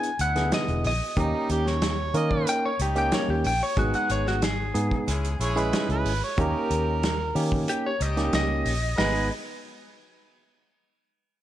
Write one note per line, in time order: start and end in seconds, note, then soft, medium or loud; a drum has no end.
0.00 0.19 G#5 medium
0.00 closed hi-hat soft
0.19 0.50 D2 medium
0.19 0.68 E3 medium
0.19 0.68 D4 medium
0.19 0.68 E4 medium
0.19 0.52 F#5 medium
0.19 closed hi-hat medium
0.36 0.91 D3 medium
0.36 0.91 B3 medium
0.36 0.91 E4 medium
0.36 0.91 G#4 medium
0.36 snare soft
0.36 closed hi-hat soft
0.52 0.84 D#5 medium
0.52 snare loud
0.52 closed hi-hat medium
0.68 0.83 E1 medium
0.68 closed hi-hat soft
0.84 1.00 A#1 loud
0.84 1.17 D#5 medium
0.84 open hi-hat medium
1.17 1.32 D#2 loud
1.17 1.83 G3 medium
1.17 1.83 A#3 medium
1.17 1.82 C#4 medium
1.17 1.83 C#4 medium
1.17 1.83 D#4 medium
1.17 1.82 D#4 medium
1.17 1.50 D#4 medium
1.17 1.83 G4 medium
1.17 kick medium
1.17 closed hi-hat medium
1.49 2.11 D#2 medium
1.49 1.70 G4 medium
1.49 closed hi-hat medium
1.67 2.14 C#5 medium
1.67 snare soft
1.82 snare loud
1.82 closed hi-hat medium
2.14 2.45 D#3 medium
2.14 2.69 A#3 medium
2.14 2.70 C#4 medium
2.14 2.70 D#4 medium
2.14 2.70 A#4 medium
2.14 2.47 D#5 loud
2.14 closed hi-hat medium
2.31 kick medium
2.47 2.64 G5 medium
2.47 closed hi-hat medium
2.65 2.80 C#5 medium
2.79 3.10 C#2 medium
2.79 3.29 G3 medium
2.79 3.28 C#4 medium
2.79 3.29 D#4 medium
2.79 3.29 G4 medium
2.79 2.97 G4 medium
2.79 closed hi-hat medium
2.95 3.51 A#3 medium
2.95 3.51 C#4 medium
2.95 3.51 D#4 medium
2.95 3.51 G4 medium
2.95 3.13 G5 medium
2.95 closed hi-hat soft
3.12 3.29 C#5 medium
3.12 snare loud
3.12 closed hi-hat medium
3.29 3.44 D#2 medium
3.29 3.45 G4 medium
3.44 3.60 A#1 loud
3.44 3.62 G5 medium
3.44 open hi-hat medium
3.63 3.78 C#5 medium
3.77 3.92 G#1 loud
3.77 4.43 G#3 medium
3.77 4.43 B3 medium
3.77 4.42 B3 medium
3.77 4.43 D#4 medium
3.77 3.94 F#4 medium
3.77 4.43 G#4 medium
3.77 kick loud
3.77 closed hi-hat medium
3.94 4.10 F#5 medium
3.94 closed hi-hat soft
4.09 4.71 G#1 medium
4.09 4.26 C#5 medium
4.09 closed hi-hat medium
4.27 4.44 F#4 medium
4.27 snare soft
4.42 5.69 G#4 medium
4.42 snare loud
4.42 closed hi-hat medium
4.74 4.90 G#2 medium
4.74 5.07 G#3 medium
4.74 5.07 B3 medium
4.74 5.07 D#4 medium
4.74 5.07 G#4 medium
4.74 closed hi-hat medium
4.91 kick medium
5.07 5.38 C#2 loud
5.07 5.34 G#3 medium
5.07 5.33 C#4 medium
5.07 5.34 E4 medium
5.07 5.34 G#4 medium
5.07 closed hi-hat medium
5.24 closed hi-hat soft
5.39 5.70 A#1 medium
5.39 5.89 G#3 medium
5.39 5.89 C#4 medium
5.39 5.89 E4 medium
5.39 5.89 G#4 loud
5.39 5.60 C#5 medium
5.39 closed hi-hat medium
5.56 6.11 G#3 medium
5.56 6.11 C#4 medium
5.56 6.11 E4 medium
5.56 6.11 G#4 loud
5.56 5.89 B4 medium
5.56 closed hi-hat soft
5.73 snare loud
5.73 closed hi-hat medium
5.89 6.04 C#2 loud
5.89 6.22 B4 medium
5.89 closed hi-hat soft
6.05 6.20 G#1 medium
6.05 open hi-hat medium
6.24 6.38 C#5 medium
6.36 6.53 D#2 loud
6.36 7.03 G3 medium
6.36 7.04 A#3 medium
6.36 7.02 C#4 medium
6.36 7.04 C#4 medium
6.36 7.02 D#4 medium
6.36 7.04 D#4 medium
6.36 7.03 G4 medium
6.36 7.04 G4 medium
6.36 kick loud
6.36 closed hi-hat medium
6.41 7.50 A#4 loud
6.70 7.31 D#2 medium
6.70 closed hi-hat medium
7.03 snare loud
7.03 closed hi-hat medium
7.35 7.66 D#3 medium
7.35 7.91 A#3 medium
7.35 7.91 C#4 medium
7.35 7.91 D#4 medium
7.35 7.91 G4 medium
7.35 open hi-hat medium
7.52 kick medium
7.68 7.85 G4 medium
7.68 closed hi-hat medium
7.86 8.02 C#5 medium
7.99 8.31 C#2 medium
7.99 8.50 G3 medium
7.99 8.49 C#4 medium
7.99 8.50 D#4 medium
7.99 8.50 G4 medium
7.99 8.33 D#5 medium
7.99 closed hi-hat medium
8.17 8.72 A#3 medium
8.17 8.72 C#4 medium
8.17 8.72 D#4 medium
8.17 8.72 G4 medium
8.17 snare soft
8.17 closed hi-hat soft
8.33 8.62 C#2 medium
8.33 8.97 D#5 medium
8.33 snare loud
8.33 closed hi-hat medium
8.65 8.95 A#1 medium
8.65 open hi-hat medium
8.98 9.29 G#1 medium
8.98 9.28 G#3 medium
8.98 9.29 G#3 medium
8.98 9.29 B3 medium
8.98 9.28 D#4 medium
8.98 9.29 D#4 medium
8.98 9.28 G#4 medium
8.98 9.29 G#4 medium
8.98 9.29 B4 medium
8.98 9.29 D#5 medium
8.98 snare medium
8.98 open hi-hat medium